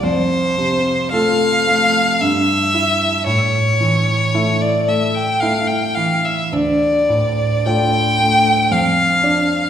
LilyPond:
<<
  \new Staff \with { instrumentName = "Violin" } { \time 3/4 \key d \minor \tempo 4 = 56 c''4 f''4 e''4 | cis''4~ cis''16 d''16 e''16 g''16 f''16 g''16 f''16 e''16 | d''4 g''4 f''4 | }
  \new Staff \with { instrumentName = "Grand piano" } { \time 3/4 \key d \minor f,8 c8 <a f' a'>8 a8 g,8 <e' e''>8 | a,8 e8 <a e' e''>8 a8 <a e' e''>8 e8 | d,8 a,8 <a f' d''>8 a8 f,8 <d' d''>8 | }
>>